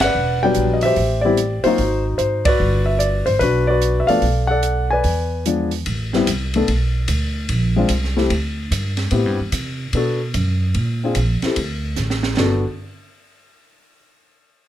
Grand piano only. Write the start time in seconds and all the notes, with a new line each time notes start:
0.01 B4 D5 F#5
0.43 F#3 G3 B3 D4 B4 D5 G5
0.74 D#5
0.83 G4 C5 E5
1.21 G3 B3 C4 G4 D5
1.26 E4
1.64 F#3 A#3 C4 D#4 F4 F#4 C5
2.18 C5
2.45 F#4 B4 D5
2.86 E5
2.99 D5
3.26 C5
3.39 D4 F#4 B4
3.67 F#4 B4 D5
4.00 E5
4.07 F3 A3 B3 D4 A4 D5 F5
4.47 A4 D5 F#5
4.91 B4 D5 G#5
5.46 F3 G#3 B3 D4
6.14 G3 B3 C4 E4
6.56 A3 B3 D4 A4
7.76 G#3 C4 D4 F4
8.17 A3 C4 E4 G4
9.11 B3 C4 E4 G4
9.95 B3 D4 F#4 A4
11.04 C4 D4 F4 G#4
11.44 C4 E4 G4 A4
12.39 B3 D4 F#4 A4